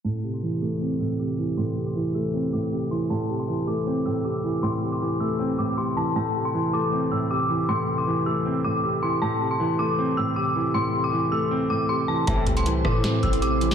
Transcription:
<<
  \new Staff \with { instrumentName = "Synth bell" } { \time 4/4 \key a \minor \tempo 4 = 157 a''8. c'''8. d'''8 r8 e'''8 d'''4 | c'''8. d'''8. e'''8 r8 d'''4 c'''8 | a''8. c'''8. d'''8 r8 e'''8 d'''4 | c'''8. d'''8. e'''8 r8 d'''8 c'''8 a''8 |
a''8. c'''8. d'''8 r8 e'''8 d'''4 | c'''8. d'''8. e'''8 r8 d'''4 c'''8 | a''8. c'''8. d'''8 r8 e'''8 d'''4 | c'''8. d'''8. e'''8 r8 d'''8 c'''8 a''8 |
a''8. c'''8. d'''8 r8 e'''8 d'''4 | }
  \new Staff \with { instrumentName = "Ambient pad" } { \time 4/4 \key a \minor r1 | r1 | r1 | r1 |
r1 | r1 | r1 | r1 |
<a e' c''>1 | }
  \new Staff \with { instrumentName = "Grand piano" } { \clef bass \time 4/4 \key a \minor a,8 c8 e8 a8 c'8 a,8 c8 e8 | a,8 c8 e8 a8 c'8 a,8 c8 e8 | a,8 c8 e8 a8 c'8 a,8 c8 e8 | a,8 c8 e8 a8 c'8 a,8 c8 e8 |
a,8 c8 e8 a8 c'8 a,8 c8 e8 | a,8 c8 e8 a8 c'8 a,8 c8 e8 | a,8 c8 e8 a8 c'8 a,8 c8 e8 | a,8 c8 e8 a8 c'8 a,8 c8 e8 |
a,8 c8 e8 a8 c'8 a,8 c8 e8 | }
  \new Staff \with { instrumentName = "Brass ensemble" } { \clef bass \time 4/4 \key a \minor r1 | r1 | r1 | r1 |
r1 | r1 | r1 | r1 |
<a, c e>8. r2. r16 | }
  \new Staff \with { instrumentName = "808-style bass" } { \clef bass \time 4/4 \key a \minor r1 | r1 | r1 | r1 |
r1 | r1 | r1 | r1 |
a,,8 c,4 a,4 a,,4. | }
  \new DrumStaff \with { instrumentName = "Drums" } \drummode { \time 4/4 r4 r4 r4 r4 | r4 r4 r4 r4 | r4 r4 r4 r4 | r4 r4 r4 r4 |
r4 r4 r4 r4 | r4 r4 r4 r4 | r4 r4 r4 r4 | r4 r4 r4 r4 |
<hh bd>8 <hh bd>16 hh16 hh8 <bd ss>8 <hh sn>8 <hh bd>16 hh16 hh8 hh16 sn16 | }
>>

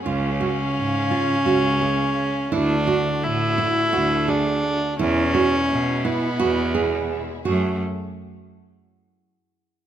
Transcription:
<<
  \new Staff \with { instrumentName = "Nylon-string guitar" } { \time 7/8 \key fis \minor \tempo 4 = 85 eis'8 fis'4 eis'8 fis'8 gis'4 | e'8 fis'4 e'8 fis'8 gis'4 | e'8 fis'4 e'8 fis'8 gis'4 | fis'8 r2. | }
  \new Staff \with { instrumentName = "Viola" } { \time 7/8 \key fis \minor cis'2.~ cis'8 | d'4 e'4. d'4 | cis'4. b4. r8 | a8 r2. | }
  \new Staff \with { instrumentName = "String section" } { \time 7/8 \key fis \minor <cis gis' eis''>2.~ <cis gis' eis''>8 | <d a fis'>2.~ <d a fis'>8 | <b, gis e'>2.~ <b, gis e'>8 | <fis a gis'>8 r2. | }
  \new Staff \with { instrumentName = "Cello" } { \clef bass \time 7/8 \key fis \minor cis,4 gis,4 cis,4. | d,4 a,4 d,4. | e,4 b,4 e,4. | fis,8 r2. | }
>>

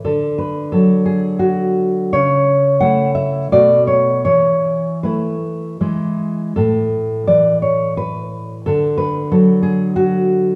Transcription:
\new Staff \with { instrumentName = "Nylon-string guitar" } { \time 3/4 \key a \major \tempo 4 = 86 << { a'8 b'8 a'8 gis'8 fis'4 | cis''4 fis''8 e''8 d''8 cis''8 | cis''4 b'4 r4 | a'4 d''8 cis''8 b'4 |
a'8 b'8 a'8 gis'8 fis'4 | } \\ { d4 fis2 | cis4 <a e'>4 <b, a fis'>4 | e4 <a e'>4 <e gis e'>4 | a,4 e2 |
d4 fis2 | } >> }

